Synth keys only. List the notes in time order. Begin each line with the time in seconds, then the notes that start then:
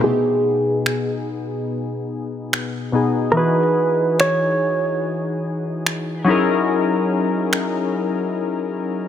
0.00 B2 B3 D#4
0.05 G#4
2.92 B2 B3 D#4 G#4
3.33 E3 D#4 F#4
3.39 G#4
6.24 F#3 C#4 D#4 E4
6.29 G#4 A#4